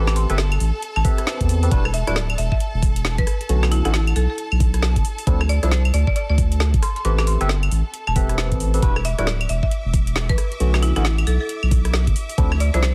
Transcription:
Already playing: A1 C4 G4 A4 B4 E5 A5
0.07 D6, cross-stick, snare, claves
0.16 C6, open hi-hat
0.30 G1 C4 G4 A4 B4 E5, cross-stick, closed hi-hat
0.38 snare
0.52 closed hi-hat, claves
0.60 A1, open hi-hat
0.82 closed hi-hat
0.96 A1 A5, claves
1.05 C4 G4 A4 B4 E5, kick, open hi-hat
1.18 cross-stick, closed hi-hat
1.27 snare
1.41 E2, kick, closed hi-hat
1.49 open hi-hat
1.63 C4 G4 A4 B4 E5, open hi-hat
1.71 E1 G3 D4 E4 F#4 B4, kick, closed hi-hat
1.85 cross-stick, claves
1.94 E5, open hi-hat
2.07 D1 G3 D4 E4 F#4 B4 D5, cross-stick, closed hi-hat
2.16 D5, snare
2.30 closed hi-hat, claves
2.38 E1 E5, open hi-hat
2.52 E5, kick
2.60 closed hi-hat
2.74 E1
2.83 kick, open hi-hat
2.96 closed hi-hat
3.05 snare
3.18 B1 B4, kick, closed hi-hat
3.27 cross-stick, open hi-hat
3.41 closed hi-hat
3.49 B1 D3 A3 B3 C#4 F#4, closed hi-hat
3.63 cross-stick, snare, claves
3.71 E4, open hi-hat
3.85 A1 D3 A3 B3 C#4 E4 F#4, cross-stick, closed hi-hat
3.94 E4, snare
4.07 closed hi-hat, claves
4.16 B1 A4, open hi-hat
4.30 A4
4.38 closed hi-hat
4.52 B1, claves
4.60 kick, open hi-hat
4.74 cross-stick, closed hi-hat
4.83 snare
4.96 F#1, kick, closed hi-hat
5.05 open hi-hat
5.18 open hi-hat
5.27 D2 F3 C4 D4 E4 A4, kick, closed hi-hat
5.41 cross-stick, claves
5.49 D5, open hi-hat
5.63 C2 F3 C4 D4 E4 A4 C5, cross-stick, closed hi-hat
5.71 C5, snare
5.85 closed hi-hat, claves
5.94 D2 D5, open hi-hat
6.07 D5, kick
6.16 D5, closed hi-hat
6.29 D2 D5
6.38 kick, open hi-hat
6.52 closed hi-hat
6.60 snare
6.74 A1, kick, closed hi-hat
6.83 C6, cross-stick, open hi-hat
6.96 C6, closed hi-hat
7.05 A1 C4 G4 A4 B4 E5 D6, closed hi-hat
7.18 D6, cross-stick, snare, claves
7.27 C6, open hi-hat
7.41 G1 C4 G4 A4 B4 E5, cross-stick, closed hi-hat
7.49 snare
7.63 closed hi-hat, claves
7.71 A1, open hi-hat
7.94 closed hi-hat
8.07 E1 A5, claves
8.16 C4 G4 A4 B4 E5, kick, open hi-hat
8.29 cross-stick, closed hi-hat
8.38 snare
8.52 A1, kick, closed hi-hat
8.60 open hi-hat
8.74 C4 G4 A4 B4 E5, open hi-hat
8.82 E1 G3 D4 E4 F#4 B4 E5 D6, kick, closed hi-hat
8.96 cross-stick, claves
9.05 E5, open hi-hat
9.18 D1 G3 D4 E4 F#4 B4 D5, cross-stick, closed hi-hat
9.27 D5, snare
9.41 closed hi-hat, claves
9.49 E1 E5, open hi-hat
9.63 E5, kick
9.71 closed hi-hat
9.85 E1
9.94 kick, open hi-hat
10.07 closed hi-hat
10.16 snare
10.29 B1 B4, kick, closed hi-hat
10.38 cross-stick, open hi-hat
10.52 closed hi-hat
10.60 B1 D3 A3 B3 C#4 F#4, closed hi-hat
10.74 cross-stick, snare, claves
10.82 E4, open hi-hat
10.96 A1 D3 A3 B3 C#4 E4 F#4, cross-stick, closed hi-hat
11.05 E4, snare
11.18 closed hi-hat, claves
11.27 B1 A4, open hi-hat
11.41 A4
11.49 closed hi-hat
11.63 B1, claves
11.71 kick, open hi-hat
11.85 cross-stick, closed hi-hat
11.94 snare
12.07 F#1, kick, closed hi-hat
12.16 open hi-hat
12.30 open hi-hat
12.38 D2 F3 C4 D4 E4 A4, kick, closed hi-hat
12.52 cross-stick, claves
12.60 D5, open hi-hat
12.74 C2 F3 C4 D4 E4 A4 C5, cross-stick, closed hi-hat
12.82 C5, snare

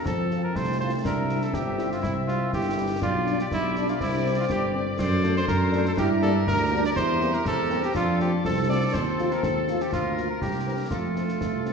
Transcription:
Already playing: C4
0.05 F2 C4 A4 A5, concert bass drum, snare
0.31 F3 C4 F4, snare
0.44 A#4
0.55 C2 A3 C5, concert bass drum, snare
0.79 F3 C4 F4 C5
1.04 C2 C4 D4 A#4 E5, concert bass drum, snare, crash
1.29 G3 C4 E4, snare
1.42 A4, snare
1.53 G1 C4 G4, concert bass drum, snare
1.78 G3 C4 E4, snare
1.92 F4, snare
2.02 C2 E4, concert bass drum, snare
2.28 G3 C4 E4 F4, snare
2.53 G1 E4 G4, concert bass drum, snare
2.76 G3 C4 E4
3.01 B1 D4 F4 G4 D5, concert bass drum, snare
3.26 G3 D4, snare
3.39 G4, snare
3.50 B1 D4 E4, concert bass drum, snare
3.76 G3 D4, snare
3.88 F4, snare
4.00 C2 C4 E4, concert bass drum, snare
4.25 G3 C4
4.40 F4
4.49 G1 G4, concert bass drum, snare
4.74 G3 C4
4.99 F#2 A4 C5 D5, concert bass drum, snare, crash
5.23 A3 C4 D4, snare
5.36 C5, snare
5.48 F#2 D4 A#4, concert bass drum, snare
5.72 A3 C4 D4, snare
5.85 A4, snare
5.97 G2 E4 G4 A#4, concert bass drum, snare
6.21 G3 A#3 D4 A4, snare
6.47 D2 D4 A#4, concert bass drum, snare
6.72 G3 A#3 D4
6.85 D5
6.96 E2 E4 C5, concert bass drum, snare
7.21 G3 A#3 C4, snare
7.33 A#4, snare
7.45 E2 C4 A4, concert bass drum, snare
7.70 G3 A#3 C4, snare
7.83 G4, snare
7.95 F2 D4 F4 A4, concert bass drum, snare
8.20 F3 A3 C4 G4, snare
8.45 C2 C4 A4, concert bass drum, snare
8.69 F3 A3 C4 D5
8.94 D#2 C4 C5, concert bass drum, snare, crash
9.18 F3 A3 F4, snare
9.31 A#4, snare
9.43 D#2 A4, concert bass drum, snare
9.68 F3 A3 F4, snare
9.80 G4, snare
9.93 D2 F4 A#4, concert bass drum, snare
10.17 F3 A#3 F4, snare
10.30 A#4
10.41 C2 A#3 E4 G4, concert bass drum, snare
10.67 E3 A#3 C4
10.91 F2 A3 F4 A4, concert bass drum, snare
11.16 F3 A3 C4, snare
11.28 snare
11.41 C2, concert bass drum, snare
11.65 F3 A3 C4, snare

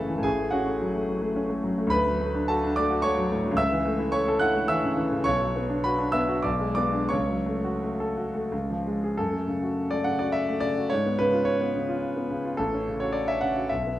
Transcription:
Already playing: F#1 F#2 C#3 E3 A3 C#4 E4 F#4 G#4 A4 B4 F#5 G#5 A5 B5
0.10 E3
0.18 A2
0.23 A1 G#4 G#5
0.38 A3
0.51 C#4 F#4 F#5
0.67 A3
0.81 F#3
0.95 A3
1.09 F#3
1.22 A3
1.36 C#4
1.50 A3
1.64 F#3
1.78 A3
1.87 D2 B5
1.91 B4
2.07 F#3
2.21 A3
2.35 D4
2.48 F#4 A4 A5
2.64 D4
2.76 A3 D5 D6
2.90 F#4
3.02 A3 C#5 C#6
3.17 F#3
3.32 A2
3.46 F#3
3.51 C#2
3.57 E5 E6
3.72 E3
3.85 A3
3.99 E4
4.12 A3 C#5 C#6
4.28 A4
4.40 E4 F#5 F#6
4.55 A3
4.68 E3 E5 E6
4.84 C#3
4.97 E3
5.12 C#3
5.24 B1 C#5 C#6
5.42 F#3
5.56 B3
5.69 D4
5.84 F#4 B4 B5
5.99 D4
6.12 B3 E5 E6
6.28 F#4
6.43 B1 D5 D6
6.60 G#3
6.75 B3 D5 D6
6.93 D4
7.09 C#2 C#5 C#6
7.29 F#3
7.46 A3
7.64 F#4
7.83 A3
8.00 A4
8.17 F#4
8.34 A3
8.52 C#2
8.70 F3
8.87 G#3
9.04 G#4
9.17 F#2 A4
9.33 A3
9.48 C#3
9.63 F#4
9.91 A3 D5
10.04 C#3 F#5
10.19 F#4 D5
10.32 E5
10.49 A3
10.60 C#3 D5
10.77 F#4
10.90 G#2 C#5
11.06 B3
11.19 C#3 B4
11.33 F4
11.45 C#5
11.61 B3
11.76 C#3
11.89 F4
12.16 B3
12.30 C#3
12.45 F4
12.57 A1 A4
12.74 C#4
12.88 C#3
13.00 F#4 C#5
13.13 D5
13.28 C#4 E5
13.41 C#3 F#5
13.57 F#4
13.69 B1 E5
13.87 B3

